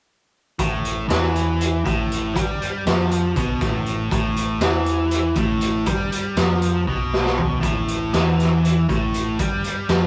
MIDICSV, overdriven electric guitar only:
0, 0, Header, 1, 2, 480
1, 0, Start_track
1, 0, Tempo, 502513
1, 568, Time_signature, 7, 3, 24, 8
1, 9618, End_track
2, 0, Start_track
2, 0, Title_t, "Overdriven electric guitar"
2, 0, Program_c, 0, 29
2, 567, Note_on_c, 0, 45, 86
2, 1033, Note_off_c, 0, 45, 0
2, 1036, Note_on_c, 0, 52, 100
2, 1757, Note_off_c, 0, 52, 0
2, 1770, Note_on_c, 0, 45, 103
2, 2241, Note_on_c, 0, 55, 100
2, 2244, Note_off_c, 0, 45, 0
2, 2720, Note_off_c, 0, 55, 0
2, 2744, Note_on_c, 0, 53, 107
2, 3211, Note_off_c, 0, 53, 0
2, 3220, Note_on_c, 0, 47, 102
2, 3450, Note_off_c, 0, 47, 0
2, 3456, Note_on_c, 0, 45, 100
2, 3928, Note_off_c, 0, 45, 0
2, 3940, Note_on_c, 0, 45, 97
2, 4410, Note_off_c, 0, 45, 0
2, 4428, Note_on_c, 0, 52, 107
2, 5124, Note_off_c, 0, 52, 0
2, 5128, Note_on_c, 0, 45, 97
2, 5601, Note_on_c, 0, 55, 96
2, 5605, Note_off_c, 0, 45, 0
2, 6081, Note_off_c, 0, 55, 0
2, 6086, Note_on_c, 0, 53, 108
2, 6561, Note_off_c, 0, 53, 0
2, 6565, Note_on_c, 0, 47, 95
2, 7263, Note_off_c, 0, 47, 0
2, 7267, Note_on_c, 0, 45, 101
2, 7768, Note_off_c, 0, 45, 0
2, 7768, Note_on_c, 0, 52, 108
2, 8483, Note_off_c, 0, 52, 0
2, 8489, Note_on_c, 0, 45, 102
2, 8964, Note_off_c, 0, 45, 0
2, 8977, Note_on_c, 0, 55, 89
2, 9447, Note_off_c, 0, 55, 0
2, 9449, Note_on_c, 0, 53, 98
2, 9618, Note_off_c, 0, 53, 0
2, 9618, End_track
0, 0, End_of_file